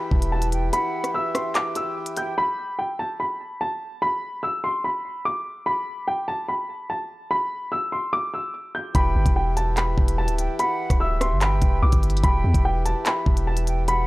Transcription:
0.00 2.33 E3 medium
0.00 2.33 E4 medium
0.00 2.34 G4 medium
0.00 2.34 B4 medium
0.00 0.30 B5 medium
0.11 0.71 E1 loud
0.11 kick medium
0.22 closed hi-hat medium
0.32 0.52 A5 medium
0.32 0.71 A5 medium
0.42 closed hi-hat medium
0.52 0.72 G5 medium
0.52 closed hi-hat medium
0.73 1.12 F#5 medium
0.73 1.12 B5 loud
0.73 closed hi-hat medium
1.04 cross-stick medium
1.04 closed hi-hat medium
1.14 1.53 E5 medium
1.14 1.32 E6 medium
1.35 1.52 C6 medium
1.35 cross-stick loud
1.35 closed hi-hat medium
1.55 1.73 D6 loud
1.55 clap loud
1.55 closed hi-hat medium
1.75 2.15 E6 medium
1.75 closed hi-hat medium
2.06 closed hi-hat medium
2.17 2.36 G5 medium
2.17 2.34 G6 medium
2.17 closed hi-hat medium
2.38 2.76 B5 loud
2.79 2.96 G5 medium
2.99 3.16 A5 medium
3.20 3.58 B5 medium
3.61 3.99 A5 medium
4.02 4.40 B5 loud
4.43 4.60 E6 medium
4.64 4.81 C6 medium
4.84 5.23 B5 medium
5.25 5.64 D6 medium
5.66 6.05 B5 loud
6.08 6.25 G5 medium
6.28 6.45 A5 medium
6.48 6.87 B5 medium
6.90 7.28 A5 medium
7.31 7.69 B5 loud
7.72 7.89 E6 medium
7.92 8.10 C6 medium
8.13 8.30 D6 loud
8.34 8.72 E6 medium
8.75 8.92 G6 medium
8.95 9.15 E1 loud
8.95 14.07 E3 medium
8.95 14.07 E4 medium
8.95 14.07 G4 medium
8.95 14.07 B4 medium
8.95 9.34 G5 loud
8.95 9.34 B5 loud
8.95 kick loud
8.95 closed hi-hat medium
9.15 9.25 G1 loud
9.26 9.95 E1 loud
9.26 kick loud
9.26 closed hi-hat medium
9.36 9.53 G5 medium
9.57 9.74 A5 medium
9.57 closed hi-hat medium
9.77 10.16 B5 medium
9.77 clap loud
9.77 closed hi-hat medium
9.98 10.30 E1 loud
9.98 kick medium
10.08 closed hi-hat medium
10.18 10.38 A5 medium
10.18 10.57 A5 medium
10.28 10.48 D1 loud
10.28 closed hi-hat medium
10.39 10.58 G5 medium
10.39 closed hi-hat medium
10.59 10.98 F#5 loud
10.59 10.98 B5 loud
10.59 closed hi-hat medium
10.90 11.33 D1 loud
10.90 kick loud
10.90 cross-stick medium
10.90 closed hi-hat medium
11.00 11.39 E5 medium
11.00 11.18 E6 medium
11.21 11.38 C6 medium
11.21 cross-stick loud
11.21 closed hi-hat medium
11.31 11.60 G1 loud
11.41 11.80 G5 medium
11.41 11.80 B5 medium
11.41 clap loud
11.41 closed hi-hat medium
11.62 11.82 E1 loud
11.62 kick medium
11.62 closed hi-hat medium
11.82 11.92 B1 loud
11.82 12.21 D6 medium
11.92 12.22 G1 loud
11.92 kick loud
11.92 closed hi-hat medium
12.03 closed hi-hat medium
12.10 closed hi-hat medium
12.17 closed hi-hat medium
12.23 12.43 E1 loud
12.23 12.62 G5 loud
12.23 12.62 B5 loud
12.23 kick loud
12.23 closed hi-hat medium
12.44 12.54 E2 loud
12.54 12.94 E1 loud
12.54 kick medium
12.54 closed hi-hat medium
12.65 12.82 G5 medium
12.85 13.03 A5 medium
12.85 closed hi-hat medium
13.06 13.45 B5 medium
13.06 clap loud
13.06 closed hi-hat medium
13.26 14.07 E1 loud
13.26 kick medium
13.37 closed hi-hat medium
13.47 13.67 A5 medium
13.47 13.86 A5 medium
13.57 closed hi-hat medium
13.67 13.87 G5 medium
13.67 closed hi-hat medium
13.88 14.07 F#5 loud
13.88 14.07 B5 loud
13.88 closed hi-hat medium

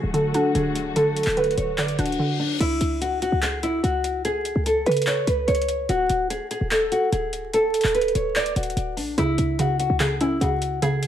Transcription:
0.00 0.33 D1 loud
0.00 0.13 D3 medium
0.00 2.57 D3 medium
0.00 2.57 F#3 medium
0.00 2.57 A3 medium
0.00 2.57 F#4 medium
0.14 0.54 D3 medium
0.14 0.30 A4 medium
0.14 closed hi-hat medium
0.34 1.37 D4 medium
0.34 0.51 F#4 medium
0.34 closed hi-hat medium
0.55 1.24 D1 loud
0.55 0.95 D3 medium
0.55 0.93 G#4 medium
0.55 closed hi-hat medium
0.75 closed hi-hat medium
0.96 1.36 D3 medium
0.96 1.35 A4 medium
0.96 closed hi-hat medium
1.16 closed hi-hat medium
1.23 1.56 D1 loud
1.23 clap medium
1.23 closed hi-hat medium
1.30 closed hi-hat medium
1.37 1.77 D3 medium
1.37 1.54 B4 medium
1.37 closed hi-hat medium
1.44 closed hi-hat medium
1.51 closed hi-hat soft
1.58 1.97 D1 loud
1.58 1.74 C#5 medium
1.58 closed hi-hat medium
1.78 2.18 D3 medium
1.78 1.95 D5 medium
1.78 clap loud
1.78 closed hi-hat soft
1.78 reverse cymbal medium
1.88 closed hi-hat medium
1.99 2.18 D1 loud
1.99 2.60 D4 medium
1.99 2.37 F#4 medium
1.99 closed hi-hat medium
2.06 closed hi-hat medium
2.12 closed hi-hat soft
2.19 2.60 D3 medium
2.39 2.56 D4 medium
2.60 2.80 C#2 loud
2.60 2.99 E4 loud
2.60 closed hi-hat medium
2.60 crash medium
2.81 3.30 C#2 loud
2.81 closed hi-hat medium
3.01 3.18 F#4 medium
3.01 closed hi-hat medium
3.22 3.39 F#4 medium
3.22 closed hi-hat medium
3.32 3.82 C#2 loud
3.42 3.59 G#4 loud
3.42 clap loud
3.42 closed hi-hat medium
3.63 3.80 E4 medium
3.63 closed hi-hat medium
3.83 4.53 C#2 loud
3.83 4.22 F#4 medium
3.83 closed hi-hat medium
4.04 closed hi-hat medium
4.25 4.63 G#4 loud
4.25 closed hi-hat medium
4.45 closed hi-hat medium
4.56 4.85 C#2 loud
4.66 4.83 A4 medium
4.66 closed hi-hat medium
4.86 5.26 C#3 loud
4.86 5.03 B4 medium
4.86 closed hi-hat soft
4.91 closed hi-hat medium
4.97 closed hi-hat medium
5.02 closed hi-hat medium
5.07 5.24 C#5 medium
5.07 clap loud
5.07 closed hi-hat medium
5.27 5.47 C#2 loud
5.27 5.44 B4 medium
5.27 closed hi-hat medium
5.48 5.87 C#2 loud
5.48 5.86 C#5 medium
5.48 closed hi-hat medium
5.55 closed hi-hat medium
5.62 closed hi-hat medium
5.69 closed hi-hat medium
5.89 6.09 D1 loud
5.89 6.28 F#4 loud
5.89 closed hi-hat medium
6.09 6.39 D1 loud
6.09 closed hi-hat medium
6.30 6.47 G#4 medium
6.30 closed hi-hat medium
6.51 6.67 G#4 medium
6.51 closed hi-hat medium
6.61 6.91 D1 loud
6.71 6.88 A4 medium
6.71 clap loud
6.71 closed hi-hat medium
6.92 7.08 F#4 medium
6.92 closed hi-hat medium
7.12 7.81 D1 loud
7.12 7.51 G#4 medium
7.12 closed hi-hat medium
7.33 closed hi-hat medium
7.54 7.92 A4 loud
7.54 closed hi-hat medium
7.74 closed hi-hat medium
7.81 8.14 D1 loud
7.81 clap medium
7.81 closed hi-hat medium
7.88 closed hi-hat medium
7.95 8.11 B4 medium
7.95 closed hi-hat medium
8.01 closed hi-hat medium
8.08 closed hi-hat soft
8.15 8.55 D1 loud
8.15 8.32 C#5 medium
8.15 closed hi-hat medium
8.36 8.53 D5 medium
8.36 clap loud
8.36 closed hi-hat soft
8.46 closed hi-hat medium
8.56 8.76 D1 loud
8.56 8.95 F#4 medium
8.56 closed hi-hat medium
8.63 closed hi-hat medium
8.70 closed hi-hat soft
8.77 8.99 D1 loud
8.77 closed hi-hat medium
8.97 9.17 A1 medium
8.97 9.14 D4 medium
8.97 open hi-hat medium
9.18 9.38 C#2 loud
9.18 9.58 C#3 loud
9.18 9.57 E4 loud
9.18 closed hi-hat medium
9.38 9.88 C#2 loud
9.38 closed hi-hat medium
9.59 9.99 C#3 medium
9.59 9.76 F#4 medium
9.59 closed hi-hat medium
9.79 9.96 F#4 medium
9.79 closed hi-hat medium
9.90 10.39 C#2 loud
10.00 10.40 C#3 medium
10.00 10.17 G#4 medium
10.00 clap loud
10.00 closed hi-hat medium
10.21 11.07 C#4 medium
10.21 10.37 E4 medium
10.21 closed hi-hat medium
10.41 11.07 C#2 loud
10.41 10.81 C#3 medium
10.41 10.80 F#4 medium
10.41 closed hi-hat medium
10.62 closed hi-hat medium
10.82 11.07 C#3 medium
10.82 11.07 G#4 loud
10.82 closed hi-hat medium
11.03 closed hi-hat medium

